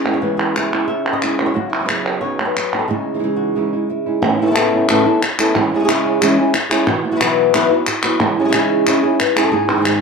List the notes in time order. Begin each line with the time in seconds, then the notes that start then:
Already playing: C#3 C#4 E4 D#5
0.06 G#3 B3 E4, clap
0.14 C#5
0.21 C#3 E3 G#3 B3 E4 B4
0.37 G#4
0.56 E3 G#3 B3 E4, clap
0.73 G#3 B3 E4, clap
0.88 C#4 E5, muted nylon-string guitar stroke
1.13 D#5
1.22 G#3 B3 E4, clap
1.39 G#3 B3 E4, clap
1.46 C#5
1.54 C#3 F#3 F#4, muted nylon-string guitar stroke
1.69 E4
1.80 F#3 B3 D#4 B4
1.85 F#3 B3 D#4 B4, clap
1.89 C#3 F#3 B3 D#4 B4
2.06 clap
2.21 C#3 F#3 B3 D#4 B4 C#5
2.39 B3 D#4 B4
2.45 B4
2.57 muted nylon-string guitar stroke, clap
2.73 B3 D#4 B4
2.79 A4
2.88 C#3 G#3 D#4 E4 G#4, muted nylon-string guitar stroke
3.14 E3 G#3 D#4 E4
3.19 E3 G#3 D#4 E4
3.23 C#3 E3 G#3
3.36 F#4
3.55 C#3 E3 G#3 D#4 E4 G#4
3.73 G#3 D#4 E4
3.89 E4, muted nylon-string guitar stroke
4.06 G#3 D#4 E4
4.22 A2 E3 B3 C#4 E4, muted nylon-string guitar stroke
4.39 C#3 A3 B3 C#4 E4
4.43 C#3 A3 B3 E4 A4
4.48 C#3 A3 B3 A4
4.52 A2 A3 E4 A4, muted nylon-string guitar stroke, clap
4.56 C#3 B3 E4 A4
4.72 B3 C#4 E4
4.88 A2 C#3 E3 A3 B3 C#4 E4 A4, clap
5.05 A3 B3 C#4 E4 A4
5.22 muted nylon-string guitar stroke, clap
5.38 A3 B3 C#4 E4 A4, clap
5.55 C#3 E3 G#3 C#4 E4, muted nylon-string guitar stroke, clap
5.72 G#3 C#4 E4
5.76 G#3 E4 G#4
5.80 G#3 C#4 E4 G#4
5.84 C#3 G#3 C#4 E4 G#4
5.88 C#4 E4 G#4, muted nylon-string guitar stroke, clap
6.05 G#3 C#4 E4
6.21 C#3 E3 G#3 C#4 E4 G#4, clap
6.37 G#3 C#4 E4 G#4
6.54 muted nylon-string guitar stroke, clap
6.70 G#3 C#4 E4 G#4, clap
6.87 B2 E3 B3 E4 F#4, muted nylon-string guitar stroke, clap
7.04 B3 E4 F#4
7.12 E3 F#3 B3 F#4 B4
7.16 E3 F#3 B3 F#4 B4
7.20 B2 E3 F#3 B3 E4 F#4 B4, clap
7.53 B2 E3 F#3 B3 F#4 B4, muted nylon-string guitar stroke, clap
7.70 F#3 B3 E4 F#4 B4
7.86 muted nylon-string guitar stroke, clap
8.03 F#3 B3 E4 F#4 B4, clap
8.20 C#3 E3 G#3 C#4 E4, muted nylon-string guitar stroke, clap
8.37 G#3 C#4 E4
8.41 G#3 E4 G#4
8.45 G#3 C#4 E4 G#4
8.49 E4 G#4, clap
8.54 C#3 E3 G#3 C#4 E4 G#4
8.86 C#3 G#3 C#4 E4 G#4, muted nylon-string guitar stroke, clap
9.03 G#3 C#4 E4 G#4
9.20 B4, muted nylon-string guitar stroke, clap
9.36 G#3 C#4 E4 G#4, clap
9.44 A4
9.52 G#2 G#4, muted nylon-string guitar stroke
9.68 C4 C5, clap
9.72 D#3 G#3 C4 D#4 G#4
9.76 D#3 G#3 C4 D#4 G#4
9.81 D#3 G#3 C4 D#4 G#4
9.85 G#2 D#3 G#3 C4 D#4 G#4, clap